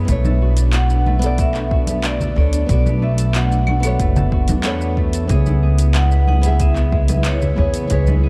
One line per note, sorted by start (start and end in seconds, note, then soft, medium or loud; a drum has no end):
0.00 0.13 G#3 medium
0.00 0.90 B3 loud
0.00 5.26 B3 medium
0.00 0.64 C#4 medium
0.00 1.88 E4 medium
0.00 0.15 G#4 medium
0.00 0.34 B4 medium
0.05 2.32 B1 loud
0.05 5.26 A3 medium
0.05 1.07 A3 loud
0.05 1.17 B3 medium
0.05 1.18 D4 medium
0.05 5.26 D4 medium
0.05 kick loud
0.05 closed hi-hat soft
0.05 shaker medium
0.10 1.19 A4 medium
0.10 1.20 C#5 medium
0.25 1.23 A4 medium
0.25 high conga medium
0.25 shaker soft
0.42 0.74 F#4 medium
0.57 1.56 D4 medium
0.57 closed hi-hat medium
0.57 shaker medium
0.73 1.39 F#4 medium
0.73 1.42 F#5 loud
0.73 clap loud
0.73 closed hi-hat soft
0.73 shaker medium
0.90 1.88 B3 medium
0.90 shaker soft
1.06 2.04 A3 loud
1.06 high conga medium
1.19 2.31 B3 medium
1.19 2.32 D4 medium
1.19 closed hi-hat medium
1.19 shaker medium
1.23 2.21 A4 medium
1.23 2.33 A4 medium
1.23 2.34 D5 loud
1.38 1.72 F#4 medium
1.38 2.07 E5 loud
1.38 kick loud
1.38 closed hi-hat soft
1.38 shaker medium
1.54 2.53 D4 medium
1.54 clap soft
1.54 shaker soft
1.71 2.37 F#4 medium
1.71 kick loud
1.87 2.86 B3 medium
1.87 closed hi-hat soft
1.87 high conga medium
1.87 shaker medium
2.04 3.02 A3 loud
2.04 2.37 D5 medium
2.04 clap loud
2.04 closed hi-hat soft
2.04 shaker medium
2.20 3.19 A4 medium
2.20 low conga medium
2.20 shaker soft
2.36 2.63 D2 medium
2.36 2.65 B3 medium
2.36 2.65 D4 medium
2.36 2.70 F#4 medium
2.36 2.66 A4 medium
2.36 2.67 C#5 medium
2.36 2.70 D5 medium
2.36 kick medium
2.53 3.51 D4 medium
2.53 closed hi-hat medium
2.53 shaker medium
2.66 3.95 B1 loud
2.66 3.78 B3 medium
2.66 3.79 D4 medium
2.66 3.35 F#4 medium
2.66 kick loud
2.66 closed hi-hat soft
2.66 shaker medium
2.71 3.80 A4 medium
2.71 3.04 D5 medium
2.71 3.81 D5 medium
2.86 3.84 B3 medium
2.86 high conga medium
2.86 shaker soft
3.02 4.01 A3 loud
3.02 3.36 E5 medium
3.18 4.17 A4 medium
3.18 closed hi-hat medium
3.18 shaker medium
3.35 3.68 F#4 medium
3.35 4.95 F#5 medium
3.35 clap loud
3.35 closed hi-hat soft
3.35 shaker medium
3.52 4.49 D4 medium
3.52 shaker soft
3.67 4.32 F#4 medium
3.67 high conga medium
3.67 claves medium
3.80 4.59 B3 medium
3.80 4.60 D4 medium
3.80 closed hi-hat medium
3.80 claves medium
3.80 shaker medium
3.84 4.81 B3 medium
3.84 4.62 A4 medium
3.84 4.63 C#5 medium
4.00 4.50 F#1 medium
4.00 4.97 A3 loud
4.00 kick loud
4.00 closed hi-hat soft
4.00 shaker soft
4.16 5.14 A4 medium
4.16 low conga medium
4.16 shaker soft
4.32 4.65 F#4 medium
4.32 kick loud
4.48 5.25 E2 medium
4.48 7.29 D4 medium
4.48 closed hi-hat medium
4.48 high conga medium
4.48 shaker medium
4.63 5.25 B3 loud
4.63 5.26 D4 medium
4.63 7.09 F#4 medium
4.63 5.27 A4 medium
4.63 5.27 C#5 loud
4.63 clap loud
4.63 closed hi-hat soft
4.63 shaker medium
4.81 5.79 B3 medium
4.81 shaker soft
4.97 5.36 A3 loud
4.97 kick medium
5.13 5.36 A4 medium
5.13 closed hi-hat medium
5.13 shaker medium
5.28 7.53 C#2 loud
5.28 8.29 C#3 medium
5.28 8.29 G#3 medium
5.28 6.39 B3 medium
5.28 8.29 B3 medium
5.28 6.40 E4 medium
5.28 8.29 E4 loud
5.28 5.62 G#4 medium
5.28 kick loud
5.28 closed hi-hat soft
5.28 shaker medium
5.32 6.41 G#4 medium
5.32 6.42 C#5 medium
5.46 6.43 E4 medium
5.46 high conga medium
5.46 shaker soft
5.63 6.27 G#4 medium
5.78 6.76 B3 medium
5.78 closed hi-hat medium
5.78 shaker medium
5.95 6.91 G#3 medium
5.95 6.27 F#5 loud
5.95 clap loud
5.95 closed hi-hat soft
5.95 shaker medium
6.11 7.08 B4 medium
6.11 shaker soft
6.27 6.60 G#4 medium
6.27 6.62 F#5 loud
6.27 high conga medium
6.41 7.53 B3 loud
6.41 7.54 E4 medium
6.41 7.41 E4 medium
6.41 closed hi-hat medium
6.41 shaker medium
6.46 7.55 G#4 medium
6.46 7.56 E5 loud
6.60 7.25 G#4 medium
6.60 7.28 E5 loud
6.60 kick loud
6.60 closed hi-hat soft
6.60 shaker medium
6.76 7.74 B3 medium
6.76 clap soft
6.76 shaker soft
6.92 7.89 G#3 loud
6.92 kick loud
7.08 8.07 B4 medium
7.08 closed hi-hat medium
7.08 high conga medium
7.08 shaker medium
7.25 7.57 G#4 medium
7.25 7.94 C#5 medium
7.25 clap loud
7.25 closed hi-hat soft
7.25 shaker medium
7.42 8.29 E4 medium
7.42 low conga medium
7.42 shaker soft
7.56 7.85 E2 loud
7.56 7.86 B3 medium
7.56 7.86 E4 medium
7.56 8.23 G#4 medium
7.56 7.87 G#4 medium
7.56 7.88 C#5 medium
7.56 kick medium
7.74 8.29 B3 medium
7.74 closed hi-hat medium
7.74 shaker medium
7.88 8.29 C#2 loud
7.88 8.29 G#3 loud
7.88 8.29 B3 medium
7.88 8.29 E4 medium
7.88 kick loud
7.88 closed hi-hat soft
7.88 shaker medium
7.92 8.29 G#4 medium
7.92 8.29 B4 medium
7.92 8.29 C#5 medium
8.07 8.29 B4 medium
8.07 high conga medium
8.07 shaker soft
8.23 8.29 G#4 medium